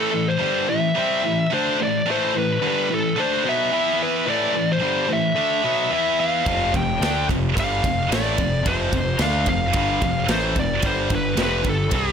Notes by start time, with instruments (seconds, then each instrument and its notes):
Already playing: distorted electric guitar A2 E3 A3, lead electric guitar A4
0.13 distorted electric guitar A2 E3
0.28 lead electric guitar C5
0.39 distorted electric guitar G2 D3 G3
0.69 distorted electric guitar A2 E3, lead electric guitar E5
0.98 distorted electric guitar C3 G3 C4
1.25 distorted electric guitar A2 E3
1.53 distorted electric guitar D3 A3 D4, lead electric guitar C5
1.80 distorted electric guitar A2 E3, lead electric guitar D5
2.07 distorted electric guitar A2 E3 A3
2.11 lead electric guitar C5
2.34 distorted electric guitar A2 E3
2.38 lead electric guitar B4
2.61 distorted electric guitar G2 D3 G3
2.67 lead electric guitar B4
2.91 distorted electric guitar A2 E3, lead electric guitar A4
3.18 distorted electric guitar D3 A3 D4, lead electric guitar C5
3.45 distorted electric guitar B2 F#3 B3
3.49 lead electric guitar E5
3.72 distorted electric guitar E3 B3 E4
4.03 lead electric guitar B4
4.26 distorted electric guitar A2 E3 A3, lead electric guitar D5
4.54 distorted electric guitar A2 E3
4.73 lead electric guitar C5
4.81 distorted electric guitar G2 D3 G3
5.08 distorted electric guitar A2 E3
5.13 lead electric guitar E5
5.35 distorted electric guitar D3 A3 D4
5.63 distorted electric guitar B2 F#3 B3
5.90 distorted electric guitar E3 B3 E4, lead electric guitar E5
6.20 lead electric guitar F5
6.46 picked electric bass F1, distorted electric guitar F2 C3 F3, kick, ride
6.73 picked electric bass F1, distorted electric guitar F2 C3, kick, ride
6.77 lead electric guitar G5
7.00 picked electric bass D2, distorted electric guitar D3 A3 D4, snare, ride
7.29 picked electric bass F1, distorted electric guitar F2 C3, kick, ride
7.56 picked electric bass G1, distorted electric guitar G2 D3 G3, lead electric guitar F5, kick, ride
7.84 picked electric bass F1, distorted electric guitar F2 C3, kick, ride
8.09 picked electric bass A1, distorted electric guitar A2 E3 A3, snare, ride
8.13 lead electric guitar D5
8.37 picked electric bass F1, distorted electric guitar F2 C3, kick, ride
8.63 picked electric bass F1, distorted electric guitar F2 C3 F3, lead electric guitar C5, kick, ride
8.92 picked electric bass F1, distorted electric guitar F2 C3, kick, ride
9.19 picked electric bass D2, distorted electric guitar D3 A3 D4, lead electric guitar F5, snare, ride
9.46 picked electric bass F1, distorted electric guitar F2 C3, lead electric guitar F5, kick, ride
9.73 picked electric bass G1, distorted electric guitar G2 D3 G3, kick, ride
10.02 picked electric bass F1, distorted electric guitar F2 C3, kick, ride
10.28 picked electric bass A1, distorted electric guitar A2 E3 A3, lead electric guitar C5, snare, ride
10.55 picked electric bass F1, distorted electric guitar F2 C3, kick, ride
10.59 lead electric guitar D5
10.82 picked electric bass G1, distorted electric guitar G2 D3 G3, lead electric guitar C5, kick, ride
11.09 picked electric bass G1, distorted electric guitar G2 D3, kick, ride
11.15 lead electric guitar B4
11.35 picked electric bass F1, distorted electric guitar F2 C3 F3, snare, ride
11.43 lead electric guitar B4
11.63 picked electric bass G1, distorted electric guitar G2 D3, kick, ride
11.69 lead electric guitar A4
11.90 picked electric bass C2, distorted electric guitar C3 G3 C4, kick, ride
11.95 lead electric guitar G4